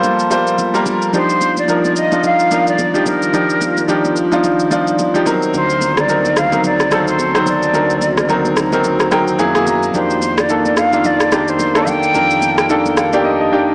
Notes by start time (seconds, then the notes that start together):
Already playing: F3 G3 A#3 F4 G4 A4 C5
0.04 low conga, shaker
0.19 shaker
0.30 G3 A#3 F4 C5, high conga, shaker
0.47 shaker
0.58 high conga, low conga, shaker
0.74 G3 A#3 F4 A#4, shaker
0.86 high conga, low conga, shaker
1.02 shaker
1.13 D#3 F3 G3 D4 D#4 G4 C5 D5, low conga, shaker
1.30 shaker
1.41 high conga, shaker
1.57 D5, high conga, shaker
1.68 F3 D4 D#4 A#4, shaker
1.85 high conga, shaker
1.96 D#5, shaker
2.12 F3 D4 D#4 F4, high conga, shaker
2.24 F5, low conga, shaker
2.39 shaker
2.51 F3 D4 D#4 A#4, high conga, shaker
2.67 D5, shaker
2.79 high conga, low conga, shaker
2.94 F3 D4 D#4 G4, shaker
3.06 A#4, high conga, low conga, shaker
3.22 shaker
3.33 F3 D4 D#4 G4, low conga, shaker
3.50 shaker
3.61 high conga, shaker
3.77 high conga, shaker
3.88 F3 D4 D#4 G4, shaker
4.05 high conga, shaker
4.16 shaker
4.32 F3 D4 D#4 F4, high conga, shaker
4.44 low conga, shaker
4.60 shaker
4.71 F3 D4 D#4 F4, high conga, shaker
4.87 shaker
4.99 high conga, low conga, shaker
5.14 F3 D4 D#4 G4, shaker
5.26 D#3 F#3 A#3 C4 D#4 F#4 A#4, high conga, low conga, shaker
5.42 shaker
5.54 D2 C5, low conga, shaker
5.70 shaker
5.81 high conga, shaker
5.97 D5, cross-stick, high conga, shaker
6.08 F#3 C4 D#4 A#4, shaker
6.25 high conga, shaker
6.37 F5, cross-stick, shaker
6.52 F#3 C4 D#4 A#4, high conga, shaker
6.64 D5, low conga, shaker
6.80 cross-stick, shaker
6.91 F#3 C4 D#4 A4, cross-stick, high conga, shaker
7.08 C5, shaker
7.19 high conga, low conga, shaker
7.34 F#3 C4 D#4 C5, cross-stick, shaker
7.46 D5, high conga, low conga, shaker
7.63 shaker
7.73 D2 F#3 C4 D#4 A#4, low conga, shaker
7.90 shaker
8.02 high conga, shaker
8.17 cross-stick, high conga, shaker
8.29 F#3 C4 D#4 A#4, shaker
8.45 high conga, shaker
8.57 cross-stick, shaker
8.72 F#3 C4 D#4 A#4, high conga, shaker
8.84 low conga, shaker
9.00 cross-stick, shaker
9.11 F#3 C4 D#4 A#4 G5, cross-stick, high conga, shaker
9.28 shaker
9.39 F#2 F#3 A#3 E4 G#4 G#5, high conga, low conga, shaker
9.55 F#3 A#3 E4 G#4, cross-stick, shaker
9.67 A#5, high conga, low conga, shaker
9.83 shaker
9.94 F2 D#3 A#3 D4 G4 C5, low conga, shaker
10.10 shaker
10.22 high conga, shaker
10.38 D5, cross-stick, high conga, shaker
10.49 D#3 A#3 D4 A4, shaker
10.65 high conga, shaker
10.77 F5, cross-stick, shaker
10.92 D#3 A#3 D4 F4, high conga, shaker
11.04 D5, low conga, shaker
11.20 cross-stick, shaker
11.31 D#3 A#3 D4 G4, cross-stick, high conga, shaker
11.48 C5, shaker
11.59 high conga, low conga, shaker
11.75 D#3 A#3 D4 A4, cross-stick, shaker
11.87 G5, high conga, low conga, shaker
12.03 shaker
12.14 F2 D#3 A#3 D4 A#4, low conga, shaker
12.31 shaker
12.42 high conga, shaker
12.58 cross-stick, high conga, shaker
12.69 D#3 A#3 D4 A4, shaker
12.86 high conga, shaker
12.97 F5, cross-stick, shaker
13.13 D#3 A#3 D4 G4 D5, high conga, shaker
13.25 D#5
13.41 D#5
13.52 D#3 A#3 D4 G4 G5
13.68 F5